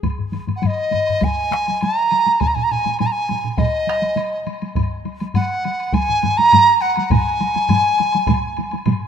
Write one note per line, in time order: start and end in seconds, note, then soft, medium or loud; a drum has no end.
0.03 taiko medium
0.03 taiko low-mid medium
0.03 taiko high medium
0.03 high woodblock soft
0.18 taiko low-mid medium
0.32 taiko low-mid medium
0.32 taiko high soft
0.32 high woodblock soft
0.47 taiko low-mid medium
0.47 taiko high soft
0.47 high woodblock soft
0.56 0.68 F#5 soft
0.62 taiko low-mid medium
0.62 taiko high medium
0.62 high woodblock soft
0.66 1.25 D#5 medium
0.91 taiko low-mid medium
0.91 taiko high soft
0.91 high woodblock soft
1.07 taiko low-mid medium
1.07 high woodblock soft
1.21 1.85 G#5 medium
1.21 taiko medium
1.21 taiko low-mid medium
1.21 taiko high medium
1.21 high woodblock soft
1.51 taiko rim medium
1.51 taiko high soft
1.51 high woodblock soft
1.66 taiko high soft
1.66 high woodblock soft
1.81 2.42 A#5 medium
1.81 taiko high medium
1.81 high woodblock soft
2.11 taiko high soft
2.11 high woodblock soft
2.26 taiko high soft
2.26 high woodblock soft
2.40 2.49 G#5 medium
2.40 taiko medium
2.40 taiko mid medium
2.40 taiko high medium
2.40 high woodblock soft
2.47 2.56 A#5 medium
2.55 2.65 G#5 medium
2.55 taiko mid medium
2.63 2.73 A#5 medium
2.69 3.00 G#5 medium
2.69 taiko mid medium
2.69 high woodblock soft
2.84 taiko mid medium
2.84 taiko high soft
2.84 high woodblock soft
2.99 3.08 G#5 medium
2.99 taiko mid medium
2.99 taiko high medium
2.99 high woodblock soft
3.06 3.13 A#5 medium
3.12 3.60 G#5 medium
3.29 taiko mid medium
3.29 taiko high soft
3.29 high woodblock soft
3.43 taiko mid medium
3.43 high woodblock soft
3.58 4.47 D#5 medium
3.58 taiko medium
3.58 taiko mid medium
3.58 taiko high medium
3.58 high woodblock soft
3.87 taiko rim medium
3.87 taiko high soft
3.87 high woodblock soft
4.02 taiko high soft
4.02 high woodblock soft
4.16 taiko high medium
4.16 high woodblock soft
4.47 taiko high soft
4.47 high woodblock soft
4.62 taiko high soft
4.62 high woodblock soft
4.75 taiko medium
4.75 taiko low-mid medium
4.75 taiko high medium
4.75 high woodblock soft
5.05 taiko high soft
5.05 high woodblock soft
5.20 taiko high medium
5.20 high woodblock soft
5.34 5.95 F#5 medium
5.34 taiko low-mid medium
5.34 taiko high medium
5.34 high woodblock soft
5.64 taiko high medium
5.64 high woodblock soft
5.80 high woodblock soft
5.92 6.39 G#5 medium
5.92 taiko medium
5.92 taiko low-mid medium
5.92 taiko high medium
5.92 high woodblock medium
6.09 taiko low-mid medium
6.23 taiko low-mid medium
6.23 taiko high medium
6.23 high woodblock soft
6.37 6.83 A#5 medium
6.37 taiko high medium
6.37 high woodblock soft
6.52 taiko low-mid medium
6.52 taiko high medium
6.52 high woodblock medium
6.81 7.13 F#5 medium
6.81 high woodblock soft
6.96 taiko high medium
6.96 high woodblock soft
7.10 8.87 G#5 medium
7.10 taiko loud
7.10 taiko low-mid medium
7.10 taiko mid loud
7.10 taiko high medium
7.10 high woodblock medium
7.40 taiko high medium
7.40 high woodblock soft
7.55 taiko high medium
7.55 high woodblock soft
7.69 taiko low-mid medium
7.69 taiko mid medium
7.69 taiko high medium
7.69 high woodblock medium
7.98 taiko high medium
7.98 high woodblock soft
8.12 taiko high medium
8.12 high woodblock soft
8.27 taiko medium
8.27 taiko low-mid medium
8.27 taiko mid loud
8.27 taiko high medium
8.27 high woodblock medium
8.57 taiko high medium
8.57 high woodblock soft
8.71 taiko high medium
8.71 high woodblock soft
8.86 taiko low-mid medium
8.86 taiko mid medium
8.86 taiko high medium
8.86 high woodblock medium